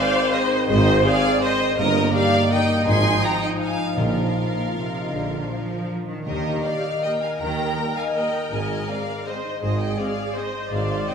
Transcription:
Already playing: G#2 D#3 C4 D#4 G#4 C5 D5 D#5 F5
0.15 C5
0.33 G#4 C5 D#5
0.52 D#4
0.69 G#1 G#2 C5 D#5
1.05 G#4 D5 F5
1.25 C5
1.42 G#4 C5 D#5
1.61 D#4
1.77 G1 G2 D#3 A#3 A#4 D#5
1.96 A#3
2.14 G4 A#4 D5 F5
2.33 D#4
2.51 D#4 A#4 D#5 G5
2.70 D#4
2.87 G#1 G#2 F3 D#4 G#5 C6
3.23 F4 G5 A#5
3.41 C5 D#5 G5
3.60 F4 F5 G#5
3.80 D#4
3.97 A#1 A#2 F4 A#4 F5
4.35 A#2 F4
4.55 A#4
4.74 C3 F4
4.93 D#4
5.10 A#1 A#2 D3 F3 D4
5.30 A#3
5.50 F3 F4
5.70 A#4
5.89 F4
6.08 D#3 D4
6.26 D#2 D#3 G4 A#4 D#5
6.45 D#4
6.64 G3 A#3 A#4 D5 F5
6.85 D#5
7.03 G3 A#3 A#4 D#5 G5
7.22 G4 F5 G#5
7.40 D#2 D#3 G5 A#5
7.59 D#4
7.77 G3 A#3 A#4
7.96 D#5 F5 G#5
8.15 G3 A#3 A#4 D#5 G5
8.35 G4
8.52 G#1 G#2 D#5 G#5
8.70 C4
8.88 G#3 C4 G#4 D5 F5
9.08 C5
9.26 G#3 C4 G#4 C5 D#5
9.44 D#4
9.62 G#1 G#2 G#4 C5 D#5
9.79 C4 D#5 G5
9.98 G#3 C4 G#4 D5 F5
10.17 C5
10.35 G#3 C4 G#4 C5 D#5
10.54 D#4
10.71 G#1 G#2 C5 D5 F5
10.89 C4
11.08 G#3 C4 C5 D#5 G5

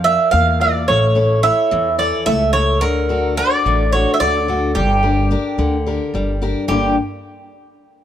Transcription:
Already playing: F2 F3
0.04 F4 A#4 D5 E5
0.31 E2 A#3 F5
0.61 F4 A#4 D5
0.88 A1 A3 C#5
1.15 E4 A4 C#5
1.43 E4 A4 C#5 E5
1.71 E2 E3
1.98 E4 A4 C#5 D5
2.26 C#2 A3 E5
2.53 E4 A4 C#5
2.81 D2 D3 A#4
3.09 D4 F#4 A4
3.37 D4 F#4 A4 D5
3.66 A1 A3
3.92 D4 F#4 A4 C#5
4.14 E5
4.20 D2 D3 D5
4.48 D4 F#4 A4
4.75 G1 G3 G4
5.03 D4 G4 A#4
5.31 D4 G4 A#4
5.58 D2 D3
5.87 D4 G4 A#4
6.14 G1 G3
6.42 D4 G4 A#4
6.68 G1 G2 D3 G3 A#3 D4 G4

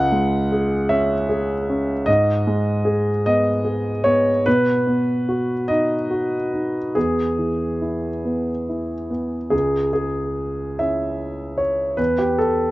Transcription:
Already playing: C#2 F#5
0.12 G#3
0.52 G#4
0.89 C#4 E5
1.29 G#4
1.69 C#4
2.06 G#2 D#5
2.47 G#3
2.85 G#4
3.26 B3 D#5
3.64 G#4
4.04 B3 C#5
4.46 B2 B4
4.87 B3
5.29 F#4
5.68 D#4 D#5
6.10 F#4
6.53 D#4
6.95 E2 G#4
7.39 E3
7.82 E4
8.25 B3
8.69 E4
9.10 B3
9.50 C#2 G#4
9.93 G#4
10.79 C#4 E4 E5
11.58 C#5
11.97 E2 B4
12.18 G4
12.38 A4

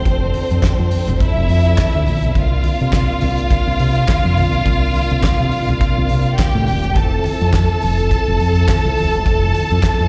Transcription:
Already playing: F3 C4 A4 C5
0.05 F1 D4, kick, closed hi-hat, muted conga
0.34 open hi-hat, muted conga
0.51 F2, closed hi-hat
0.62 kick, snare, clap, closed hi-hat, high conga
0.79 F2
0.91 open hi-hat
1.08 F1, closed hi-hat, low conga
1.20 E4 E5, kick, closed hi-hat, muted conga
1.37 F1
1.49 F2, open hi-hat
1.65 closed hi-hat
1.78 kick, snare, clap, closed hi-hat, high conga
1.95 D2
2.07 A#1, open hi-hat, high conga
2.23 B1, closed hi-hat
2.35 C2 C3 A#3 F4 F5, kick, closed hi-hat, muted conga
2.64 open hi-hat, muted conga
2.80 C3, closed hi-hat
2.92 kick, snare, clap, closed hi-hat, high conga
3.21 C2, open hi-hat, low conga
3.38 closed hi-hat
3.50 kick, closed hi-hat, muted conga
3.67 C2
3.79 C3, open hi-hat
3.95 closed hi-hat
4.08 kick, snare, clap, closed hi-hat, high conga
4.25 F2
4.37 A#1, open hi-hat, high conga
4.53 B1, closed hi-hat
4.66 C2, kick, closed hi-hat, muted conga
4.94 open hi-hat, muted conga
5.11 C2, closed hi-hat
5.22 kick, snare, clap, closed hi-hat, high conga
5.40 C3
5.51 open hi-hat
5.68 C2, closed hi-hat, low conga
5.81 kick, closed hi-hat, muted conga
5.98 C2
6.09 C3, open hi-hat, muted conga
6.26 closed hi-hat
6.38 G4 G5, kick, snare, clap, closed hi-hat, high conga
6.55 A2
6.67 D#1, open hi-hat, high conga
6.83 E1, closed hi-hat
6.96 F1 F3 C4 E4 A4 A5, kick, closed hi-hat, muted conga
7.24 open hi-hat, muted conga
7.41 F2, closed hi-hat
7.53 kick, snare, clap, closed hi-hat, high conga
7.82 F1, open hi-hat, low conga
7.98 closed hi-hat
8.11 kick, closed hi-hat, muted conga
8.28 F1
8.40 F2, open hi-hat
8.56 closed hi-hat
8.68 kick, snare, clap, closed hi-hat, high conga
8.85 C2
8.97 D#1, open hi-hat, high conga
9.13 E1, closed hi-hat
9.26 F1, kick, closed hi-hat, muted conga
9.55 open hi-hat, muted conga
9.71 F2, closed hi-hat
9.83 kick, snare, clap, closed hi-hat, high conga
10.00 F2

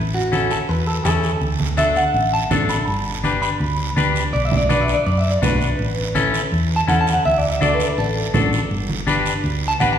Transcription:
Already playing: A1
0.14 F#4
0.32 C#4 E4 A4, high conga, short guiro
0.51 A4, short guiro
0.69 E2 B4, long guiro
0.87 A4
1.05 E2 C#4 E4 A4, high conga, short guiro
1.23 short guiro
1.41 D2, long guiro
1.60 high conga
1.77 D4 F#4 A4 E5, high conga, short guiro
1.96 F#5, short guiro
2.14 A1, long guiro
2.33 A5
2.51 A1 D4 F#4 A4, high conga, low conga, short guiro
2.69 B5, short guiro
2.87 G1 A5, long guiro
3.24 D4 G4 B4, high conga, short guiro
3.42 B5, short guiro
3.60 D2, long guiro
3.96 D2 D4 G4 B4, high conga, short guiro
4.16 short guiro
4.33 B1 D5, long guiro
4.45 E5
4.52 high conga, low conga
4.57 D5
4.69 D4 F#4 B4 D5, high conga, short guiro
4.81 E5
4.88 short guiro
4.94 D5
5.06 F#2 D5, long guiro
5.18 E5
5.31 D5
5.42 B1 D4 F#4 B4, high conga, low conga, short guiro
5.61 short guiro
5.79 A1, long guiro
6.15 C#4 E4 A4, high conga, short guiro
6.34 short guiro
6.52 E2, long guiro
6.76 A5
6.87 E2 C#4 E4 A4 F#5, high conga, short guiro
7.01 A5
7.07 short guiro
7.13 F#5
7.25 D2 E5, long guiro
7.38 D5
7.50 E5
7.61 D4 F#4 A4 D5, high conga, short guiro
7.74 B4
7.80 short guiro
7.86 A4
7.98 A1 A4, long guiro
8.34 A1 D4 F#4 A4, high conga, low conga, short guiro
8.53 short guiro
8.71 G1, long guiro
8.89 high conga
9.07 D4 G4 B4, high conga, short guiro
9.26 short guiro
9.44 D2, long guiro
9.68 A5
9.80 A1 D4 G4 B4 F#5, high conga, short guiro
9.93 A5

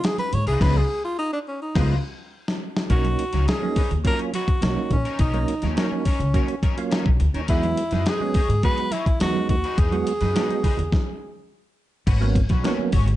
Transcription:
0.03 G#4, muted clean electric guitar stroke, snare, closed hi-hat, muted conga
0.18 B4, muted clean electric guitar stroke, closed hi-hat, high conga
0.33 G#2 C#5, closed hi-hat, muted conga, low conga
0.47 C2 D#4 F4 G#4 B4, closed hi-hat
0.60 C#2 F3 G#3 B3 C#4 D#4 F4 B4, kick, snare, crash
0.77 G#4
1.04 F4
1.18 D#4
1.33 D4
1.48 C#4
1.62 D#4
1.75 C#2 F3 G#3 B3 D#4 F4 B4, kick, snare, crash
2.48 snare
2.77 snare
2.90 B1 F#3 A#3 C#4 D#4 F#4 A#4, kick, closed hi-hat, muted conga
3.04 closed hi-hat, high conga
3.19 muted clean electric guitar stroke, closed hi-hat
3.33 C#2 C#4 D#4 A#4, snare, closed hi-hat, high conga
3.47 C#4 D#4 G#4 A#4, snare, closed hi-hat, muted conga
3.61 F#3 A#3 C#4 D#4, muted clean electric guitar stroke, high conga
3.76 C#4 D#4 B4, muted upright bass stroke, kick, open hi-hat, muted conga
3.91 D#2, muted clean electric guitar stroke, closed hi-hat, low conga
4.04 F#3 A#3 C#4 D#4 F4 A#4, kick, closed hi-hat
4.19 muted clean electric guitar stroke, closed hi-hat
4.33 C#4 D#4 F#4 B4, closed hi-hat, muted conga, high conga
4.48 muted clean electric guitar stroke, kick, closed hi-hat
4.61 B1 F#3 A#3 C#4 D#4, muted clean electric guitar stroke, snare, closed hi-hat, muted conga
4.77 muted clean electric guitar stroke, high conga
4.91 A#1 C#4, kick, closed hi-hat, low conga
5.05 C#4 D#4 A#4, closed hi-hat
5.19 B1 C#4 D#4 A#4, kick, closed hi-hat
5.33 F#3 A#3 C#4 D#4, closed hi-hat, high conga
5.48 muted clean electric guitar stroke, closed hi-hat
5.62 D#2 C#4 D#4 A#4, snare, closed hi-hat, high conga
5.76 F#3 A#3 C#4 D#4 A#4, snare, closed hi-hat, muted conga
5.92 muted clean electric guitar stroke, high conga
6.05 C#4 D#4 A#4, muted upright bass stroke, kick, open hi-hat, muted conga
6.19 C#2, muted clean electric guitar stroke, closed hi-hat, low conga
6.34 F#3 A#3 C#4 D#4 F#4 A#4, kick, closed hi-hat
6.48 muted clean electric guitar stroke, closed hi-hat
6.62 C#4 D#4 A#4, kick, closed hi-hat, high conga
6.77 F#3 A#3 C#4 F4, muted clean electric guitar stroke, closed hi-hat
6.91 C#4 D#4 A#4, snare, closed hi-hat
7.06 B1, kick, high conga
7.20 D2, muted clean electric guitar stroke, closed hi-hat, low conga
7.34 D#2 C#4 D#4 A#4, closed hi-hat
7.48 E2 F#3 G#3 B3 D#4 E4 G#4 B4, kick, closed hi-hat
7.63 closed hi-hat, high conga
7.77 muted clean electric guitar stroke, closed hi-hat
7.91 F#2 D#4 G#4 B4, snare, closed hi-hat, high conga
8.06 D#4 G#4 B4, snare, closed hi-hat
8.20 F#3 G#3 B3 C#4, muted clean electric guitar stroke, high conga
8.34 D#4 G#4 C#5, muted upright bass stroke, kick, open hi-hat
8.48 G#2, muted clean electric guitar stroke, closed hi-hat, low conga
8.63 F#3 G#3 B3 D#4 F#4 G#4 B4, kick, closed hi-hat, muted conga
8.78 muted clean electric guitar stroke, closed hi-hat
8.91 D#4 E4 G#4 C#5, closed hi-hat, muted conga, high conga
9.06 muted clean electric guitar stroke, kick, closed hi-hat
9.20 E2 F#3 G#3 B3 D#4 F#4, muted clean electric guitar stroke, snare, closed hi-hat, muted conga
9.34 muted clean electric guitar stroke, high conga
9.49 D#2 F#4, kick, closed hi-hat, muted conga, low conga
9.64 D#4 G#4 B4, closed hi-hat
9.77 E2 D#4 G#4 B4, kick, closed hi-hat, muted conga
9.91 F#3 G#3 B3 F#4, closed hi-hat, high conga
10.07 muted clean electric guitar stroke, closed hi-hat
10.21 F#2 D#4 G#4 B4, snare, closed hi-hat, high conga
10.34 F#3 G#3 B3 D#4 F#4 G#4 B4, snare, closed hi-hat, muted conga
10.49 muted clean electric guitar stroke, closed hi-hat, high conga
10.63 D#4 G#4 B4, muted upright bass stroke, kick, open hi-hat, muted conga, low conga
10.77 E2, muted clean electric guitar stroke, closed hi-hat, low conga
10.92 kick, snare
12.07 G#1 C#4 F#4 B4, kick, closed hi-hat, crash, muted conga
12.21 F#3 A#3 B3 C#4, closed hi-hat, high conga
12.35 muted clean electric guitar stroke, kick, closed hi-hat
12.49 B1 C#4 F#4 B4, kick, snare, closed hi-hat, high conga
12.63 F#3 A#3 B3 C#4 F#4 B4, snare, closed hi-hat
12.78 muted clean electric guitar stroke, high conga
12.92 G#1 C#4 F#4 C#5, kick, open hi-hat, low conga
13.06 muted clean electric guitar stroke, closed hi-hat, low conga

